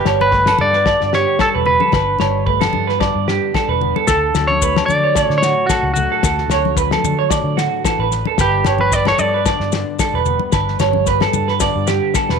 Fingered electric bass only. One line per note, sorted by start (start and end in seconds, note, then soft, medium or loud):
0.06 0.52 G1 medium
0.60 0.95 G2 medium
1.02 1.24 G2 medium
1.55 1.78 E1 medium
1.93 2.16 G1 medium
2.20 2.66 G1 medium
2.75 3.09 G2 medium
3.15 3.38 G2 medium
3.69 3.91 E1 medium
4.07 4.31 D2 medium
4.35 4.81 D2 medium
4.89 5.24 D3 medium
5.30 5.53 D3 medium
5.83 6.06 C#2 medium
6.24 6.46 D2 loud
6.48 6.95 D2 medium
7.04 7.39 D3 medium
7.44 7.67 D3 medium
7.99 8.22 A1 medium
8.39 8.61 G1 loud
8.66 9.12 G1 medium
9.19 9.54 G2 medium
9.60 9.83 G2 medium
10.14 10.37 E1 loud
10.53 10.76 G1 medium
10.80 11.26 G1 medium
11.33 11.69 G2 medium
11.76 11.99 G2 medium
12.30 12.39 E1 medium